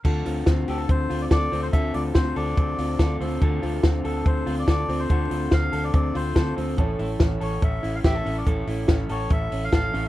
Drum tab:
CC |x-------|--------|--------|--------|
HH |-oxoxoxo|xoxoxoxo|xoxoxoxo|xoxoxoxo|
SD |--o---o-|--o---o-|--o---o-|--o---o-|
BD |o-o-o-o-|o-o-o-o-|o-o-o-o-|o-o-o-o-|

CC |--------|--------|
HH |xoxoxoxo|xoxoxoxo|
SD |--o---o-|--o---o-|
BD |o-o-o-o-|o-o-o-o-|